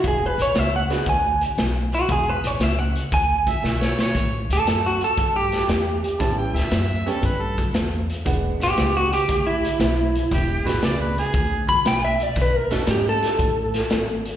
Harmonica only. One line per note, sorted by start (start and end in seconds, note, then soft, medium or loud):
3.50 3.83 E5 medium
3.82 3.98 C#5 medium
4.00 4.44 C#5 medium
6.21 6.37 A5 medium
6.38 6.59 G5 medium
6.57 7.10 E5 medium
7.09 7.27 A4 medium
7.25 7.43 B4 medium
7.41 7.69 A4 medium
10.34 10.69 G4 medium
10.67 10.83 B4 medium
10.85 11.00 D5 medium
11.01 11.17 B4 medium
11.19 11.62 G#4 medium